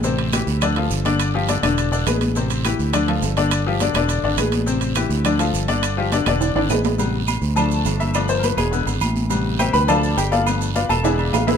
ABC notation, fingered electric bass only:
X:1
M:4/4
L:1/8
Q:1/4=207
K:Am
V:1 name="Fingered electric bass" clef=bass
A,,,3 D,,3 G,,,2- | G,,,3 E,,,3 A,,,2- | A,,,3 D,,3 G,,,2- | G,,,3 E,,,2 ^G,,, A,,,2- |
A,,,3 D,,3 G,,,2- | G,,,3 E,,,2 ^G,,, A,,,2- | A,,,3 D,,3 G,,,2- | G,,,3 E,,,2 ^G,,, A,,,2- |
A,,,3 D,,3 G,,,2- | G,,,3 E,,,3 A,,,2 |]